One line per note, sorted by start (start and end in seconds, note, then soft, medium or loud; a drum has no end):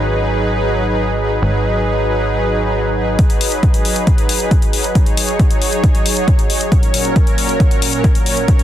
0.00 1.40 G#1 medium
0.10 0.18 F#3 medium
0.10 0.18 D#4 medium
0.10 0.18 G#4 medium
0.10 0.18 B4 medium
0.21 0.29 F#3 medium
0.21 0.29 D#4 medium
0.21 0.29 G#4 medium
0.21 0.29 B4 medium
0.32 0.48 F#3 medium
0.32 0.48 D#4 medium
0.32 0.48 G#4 medium
0.32 0.48 B4 medium
0.54 0.70 F#3 loud
0.54 0.70 D#4 medium
0.54 0.70 G#4 loud
0.54 0.70 B4 medium
0.76 0.84 F#3 medium
0.76 0.84 D#4 medium
0.76 0.84 G#4 medium
0.76 0.84 B4 medium
0.87 1.03 F#3 medium
0.87 1.03 D#4 medium
0.87 1.03 G#4 medium
0.87 1.03 B4 medium
1.20 1.36 F#3 medium
1.20 1.36 D#4 medium
1.20 1.36 G#4 loud
1.20 1.36 B4 loud
1.42 3.17 G#1 medium
1.42 1.58 F#3 medium
1.42 1.58 D#4 medium
1.42 1.58 G#4 medium
1.42 1.58 B4 medium
1.64 1.80 F#3 medium
1.64 1.80 D#4 medium
1.64 1.80 G#4 medium
1.64 1.80 B4 medium
1.87 1.94 F#3 medium
1.87 1.94 D#4 medium
1.87 1.94 G#4 medium
1.87 1.94 B4 medium
1.98 2.05 F#3 medium
1.98 2.05 D#4 medium
1.98 2.05 G#4 medium
1.98 2.05 B4 medium
2.08 2.24 F#3 medium
2.08 2.24 D#4 medium
2.08 2.24 G#4 medium
2.08 2.24 B4 medium
2.31 2.46 F#3 loud
2.31 2.46 D#4 medium
2.31 2.46 G#4 medium
2.31 2.46 B4 medium
2.53 2.60 F#3 medium
2.53 2.60 D#4 medium
2.53 2.60 G#4 medium
2.53 2.60 B4 medium
2.64 2.79 F#3 medium
2.64 2.79 D#4 medium
2.64 2.79 G#4 medium
2.64 2.79 B4 medium
2.97 3.12 F#3 medium
2.97 3.12 D#4 medium
2.97 3.12 G#4 medium
2.97 3.12 B4 medium
3.19 3.34 F#3 medium
3.19 3.34 D#4 medium
3.19 3.34 G#4 medium
3.19 3.34 B4 medium
3.19 kick loud
3.19 closed hi-hat medium
3.30 closed hi-hat medium
3.41 3.56 F#3 medium
3.41 3.56 D#4 medium
3.41 3.56 G#4 medium
3.41 3.56 B4 medium
3.41 open hi-hat loud
3.52 closed hi-hat medium
3.63 3.71 F#3 medium
3.63 3.71 D#4 medium
3.63 3.71 G#4 medium
3.63 3.71 B4 medium
3.63 kick loud
3.63 closed hi-hat medium
3.74 3.82 F#3 medium
3.74 3.82 D#4 medium
3.74 3.82 G#4 medium
3.74 3.82 B4 medium
3.74 closed hi-hat medium
3.85 4.00 F#3 medium
3.85 4.00 D#4 medium
3.85 4.00 G#4 medium
3.85 4.00 B4 medium
3.85 open hi-hat medium
3.96 closed hi-hat medium
4.07 4.23 F#3 medium
4.07 4.23 D#4 loud
4.07 4.23 G#4 medium
4.07 4.23 B4 loud
4.07 kick loud
4.07 closed hi-hat medium
4.18 closed hi-hat medium
4.29 4.37 F#3 medium
4.29 4.37 D#4 medium
4.29 4.37 G#4 medium
4.29 4.37 B4 medium
4.29 open hi-hat loud
4.40 4.56 F#3 medium
4.40 4.56 D#4 medium
4.40 4.56 G#4 medium
4.40 4.56 B4 medium
4.40 closed hi-hat medium
4.51 kick loud
4.51 closed hi-hat medium
4.62 closed hi-hat medium
4.73 4.89 F#3 medium
4.73 4.89 D#4 medium
4.73 4.89 G#4 loud
4.73 4.89 B4 loud
4.73 open hi-hat medium
4.84 closed hi-hat medium
4.95 5.11 F#3 medium
4.95 5.11 D#4 medium
4.95 5.11 G#4 medium
4.95 5.11 C#5 medium
4.95 kick loud
4.95 closed hi-hat medium
5.06 closed hi-hat medium
5.17 5.33 F#3 medium
5.17 5.33 D#4 medium
5.17 5.33 G#4 medium
5.17 5.33 C#5 medium
5.17 open hi-hat loud
5.28 closed hi-hat medium
5.39 5.47 F#3 medium
5.39 5.47 D#4 medium
5.39 5.47 G#4 medium
5.39 5.47 C#5 medium
5.39 kick loud
5.39 closed hi-hat medium
5.51 5.58 F#3 medium
5.51 5.58 D#4 medium
5.51 5.58 G#4 medium
5.51 5.58 C#5 medium
5.51 closed hi-hat medium
5.62 5.77 F#3 medium
5.62 5.77 D#4 medium
5.62 5.77 G#4 medium
5.62 5.77 C#5 medium
5.62 open hi-hat medium
5.73 closed hi-hat medium
5.84 5.99 F#3 loud
5.84 5.99 D#4 medium
5.84 5.99 G#4 medium
5.84 5.99 C#5 medium
5.84 kick loud
5.84 closed hi-hat medium
5.95 closed hi-hat medium
6.06 6.14 F#3 medium
6.06 6.14 D#4 medium
6.06 6.13 G#4 medium
6.06 6.14 C#5 medium
6.06 open hi-hat loud
6.17 6.32 F#3 medium
6.17 6.32 D#4 medium
6.17 6.32 G#4 medium
6.17 6.32 C#5 medium
6.17 closed hi-hat medium
6.28 kick loud
6.28 closed hi-hat medium
6.39 closed hi-hat medium
6.50 6.65 F#3 loud
6.50 6.65 D#4 medium
6.50 6.65 G#4 loud
6.50 6.65 C#5 medium
6.50 open hi-hat loud
6.61 closed hi-hat medium
6.72 6.87 A#2 medium
6.72 6.87 F#3 medium
6.72 6.87 C#4 medium
6.72 6.87 A#4 medium
6.72 6.87 C#5 medium
6.72 kick loud
6.72 closed hi-hat medium
6.83 closed hi-hat medium
6.94 7.09 A#2 medium
6.94 7.09 F#3 medium
6.94 7.09 C#4 medium
6.94 7.09 A#4 medium
6.94 7.09 C#5 medium
6.94 open hi-hat loud
7.05 closed hi-hat medium
7.16 7.24 A#2 medium
7.16 7.24 F#3 medium
7.16 7.24 C#4 medium
7.16 7.24 A#4 medium
7.16 7.24 C#5 medium
7.16 kick loud
7.16 closed hi-hat medium
7.27 7.35 A#2 medium
7.27 7.35 F#3 medium
7.27 7.35 C#4 medium
7.27 7.35 A#4 medium
7.27 7.35 C#5 medium
7.27 closed hi-hat medium
7.38 7.53 A#2 medium
7.38 7.53 F#3 medium
7.38 7.53 C#4 medium
7.38 7.53 A#4 medium
7.38 7.53 C#5 medium
7.38 open hi-hat loud
7.49 closed hi-hat medium
7.60 7.75 A#2 medium
7.60 7.75 F#3 medium
7.60 7.75 C#4 medium
7.60 7.75 A#4 loud
7.60 7.75 C#5 medium
7.60 kick loud
7.60 closed hi-hat medium
7.71 closed hi-hat medium
7.82 7.90 A#2 medium
7.82 7.90 F#3 medium
7.82 7.90 C#4 medium
7.82 7.90 A#4 medium
7.82 7.90 C#5 medium
7.82 open hi-hat loud
7.93 8.09 A#2 medium
7.93 8.09 F#3 medium
7.93 8.09 C#4 medium
7.93 8.09 A#4 medium
7.93 8.09 C#5 medium
7.93 closed hi-hat medium
8.04 kick loud
8.04 closed hi-hat medium
8.15 closed hi-hat medium
8.26 8.42 A#2 medium
8.26 8.42 F#3 medium
8.26 8.42 C#4 loud
8.26 8.42 A#4 loud
8.26 8.42 C#5 medium
8.26 open hi-hat loud
8.37 closed hi-hat medium
8.48 8.63 A#2 medium
8.48 8.63 F#3 medium
8.48 8.63 C#4 medium
8.48 8.63 A#4 loud
8.48 8.63 C#5 medium
8.48 kick loud
8.48 closed hi-hat medium
8.59 closed hi-hat medium